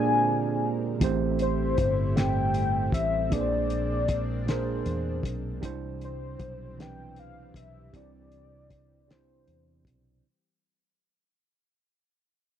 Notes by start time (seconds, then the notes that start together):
Already playing: A#2 D3 G#3 A#3 C4 D4 F4 G4 G#4 A#4 C5 D5 G#5
1.00 A1 A2 G3 A3 C4 E4 G4, kick, closed hi-hat
1.04 C5
1.39 C5, closed hi-hat
1.78 G1, kick, closed hi-hat
2.14 A2 A3 C4 G5, snare, closed hi-hat
2.18 G4 C5
2.54 closed hi-hat
2.92 A1 E5, kick, closed hi-hat
3.30 A#1 A#2 G#3 A#3 D4 G#4 D5, kick, closed hi-hat
3.34 B4
3.41 C5
3.70 closed hi-hat
4.08 kick, closed hi-hat
4.46 A#2 A#3 D4 G#4 C5, snare, closed hi-hat
4.51 A#4
4.86 E2, closed hi-hat
5.23 B1, kick, closed hi-hat
5.61 C2 C3 E3 G3 C4 D4 E4, kick, closed hi-hat
5.65 C5
6.01 C5, closed hi-hat
6.39 B1, kick, closed hi-hat
6.76 E3 C4 D4 G4, snare, closed hi-hat
6.81 B4 G5
7.16 F5, closed hi-hat
7.54 B1 E5, kick, closed hi-hat
7.93 C2 C3 C4 D4 E4 D5, kick, closed hi-hat
7.97 D5
8.32 closed hi-hat
8.70 kick, closed hi-hat
9.08 C3 C4 D4 E4, snare, closed hi-hat
9.12 C5
9.48 E2, closed hi-hat
9.85 B1, kick, closed hi-hat